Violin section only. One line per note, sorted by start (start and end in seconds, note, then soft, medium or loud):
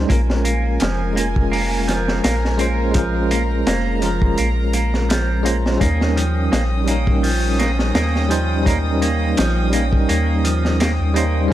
0.09 5.76 A#4 medium
0.09 2.92 G#5 medium
2.95 5.78 A#5 medium
5.81 11.48 C#4 medium
5.81 11.48 G5 medium
5.81 11.48 D#6 medium